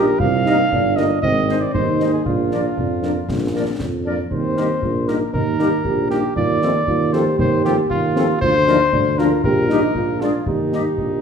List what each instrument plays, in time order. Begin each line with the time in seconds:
Already playing: tuba A#1, euphonium G4, cornet A#4
0.19 tuba C2, euphonium F4, cornet F5, concert bass drum
0.46 french horn section G3 A#3 D#4, euphonium D#4, woodwind section A#4 D#5, snare
0.71 tuba G1, euphonium D4, concert bass drum
0.96 french horn section G3 A#3 D#4, woodwind section A#4 D#5, cornet D#5, snare
1.22 tuba G#1, euphonium C4, cornet D#5, concert bass drum
1.48 french horn section G#3 C4 D#4, woodwind section C5 D#5, snare
1.61 cornet D5
1.73 tuba D#2, euphonium D#4, cornet C5, concert bass drum
2.00 french horn section G#3 C4 D#4, woodwind section C5 D#5, snare
2.13 cornet G#4
2.25 tuba A#1, euphonium D4, cornet F4, concert bass drum
2.51 french horn section F3 A#3 D4, woodwind section A#4 D5, snare
2.77 tuba F2, concert bass drum
3.02 french horn section F3 A#3 D4, woodwind section A#4 D5, snare
3.28 tuba A#1, concert bass drum, snare
3.54 french horn section F3 A#3 D4, woodwind section A#4 D5
3.80 tuba F2, concert bass drum, snare
4.05 french horn section F3 A#3 D4, woodwind section A#4 D5
4.31 tuba D#2, euphonium C4, cornet C5, concert bass drum
4.56 french horn section G3 A#3 D#4, woodwind section G4 A#4, snare
4.82 tuba A#1, euphonium A#3, concert bass drum
5.08 french horn section G3 A#3 D#4, woodwind section G4 A#4, cornet A#4, snare
5.33 tuba D#2, euphonium D#4, cornet A#4, concert bass drum
5.59 french horn section G3 A#3 D#4, woodwind section G4 A#4, snare
5.85 tuba A#1, euphonium G4, concert bass drum
6.10 french horn section G3 A#3 D#4, cornet G4, woodwind section G4 A#4, snare
6.36 tuba D#2, euphonium F4, cornet D5, concert bass drum
6.62 french horn section F3 A3 C4, euphonium D#4, woodwind section F4 A4, snare
6.87 tuba D#2, euphonium F4, concert bass drum
7.13 french horn section F3 A3 C4, woodwind section F4 A4, euphonium G4, cornet C5, snare
7.39 tuba D#2, cornet C5, concert bass drum
7.64 french horn section F3 A3 C4, woodwind section F4 A4, cornet G4, snare
7.90 tuba D#2, cornet F4, concert bass drum
8.15 french horn section F3 A3 C4, woodwind section F4 A4, snare
8.41 tuba D2, euphonium F4, cornet C5, concert bass drum
8.67 french horn section F3 A#3 D4, euphonium D#4, woodwind section F4 A#4, snare
8.92 tuba D2, euphonium D4, concert bass drum
9.18 french horn section F3 A#3 D4, euphonium F4, woodwind section F4 A#4, cornet A#4, snare
9.44 tuba A#1, euphonium G4, cornet A#4, concert bass drum
9.69 french horn section G3 A#3 D#4, euphonium D#4, woodwind section G4 D#5, snare
9.95 tuba A#1, euphonium F4, concert bass drum
10.21 french horn section G#3 A#3 D4, cornet F4, woodwind section G#4 D5, snare
10.46 tuba D#2, cornet D#4, euphonium G4, concert bass drum
10.72 french horn section G3 A#3 D#4, woodwind section G4 D#5, snare
10.98 tuba A#1, concert bass drum